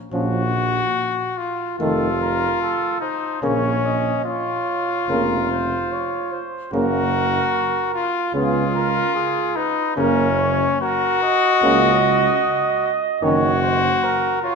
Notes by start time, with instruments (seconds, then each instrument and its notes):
0.12 tuba A#1, trombone F3, french horn C#4, trumpet F#4
1.38 trumpet F4
1.79 tuba F1, trombone D#3, french horn A3, trumpet F4, flugelhorn A4
2.21 flugelhorn A#4
2.61 flugelhorn A4
3.00 trumpet D#4, flugelhorn C5
3.42 tuba A#1, trombone C#3, french horn A#3, trumpet C#4, flugelhorn C#5
3.86 flugelhorn D#5
4.24 trumpet F4, flugelhorn C#5
5.08 tuba F1, trombone C#3, french horn A#3, flugelhorn A#4
5.51 flugelhorn C5
5.92 flugelhorn C#5
6.32 flugelhorn C5
6.72 tuba F#1, trombone C#3, french horn A#3, trumpet F#4, flugelhorn A#4
7.94 trumpet F4
8.34 tuba C#2, trombone C#3, french horn B3, trumpet F4, flugelhorn G#4
8.75 flugelhorn A#4
9.15 flugelhorn G#4
9.56 trumpet D#4, flugelhorn B4
9.97 tuba F#1, trombone C#3, french horn A#3, trumpet C#4, flugelhorn A#4
10.39 flugelhorn C#5
10.81 trumpet F#4, flugelhorn A#4
11.23 flugelhorn D#5
11.62 tuba C#2, trombone C#3, french horn A#3
13.21 tuba F#1, trombone D#3, french horn C#4, trumpet F#4, flugelhorn C#5
13.62 flugelhorn C5
14.04 flugelhorn A#4
14.42 trumpet F4, flugelhorn C#5